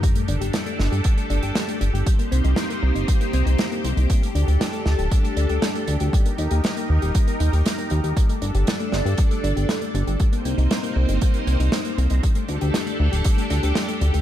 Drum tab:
HH |xxxxxx-xxxxxxxxx|xxxxxx-xxxxxxxxx|xxxxxx-xxxxxxxxx|xxxxxx-xxxxxxxxx|
SD |----o-o-----o---|----o-------o---|----o-o-----o---|----o-------o---|
BD |o-------o-------|o-------o-------|o-------o-------|o-------o-------|

HH |xxxxxx-xxxxxxxxx|xxxxxx-xxxxxxxxx|xxxxxx-xxxxxxxxx|
SD |----o-o-----o---|----o-------o---|----o-------o---|
BD |o-------o-------|o-------o-------|o-------o-------|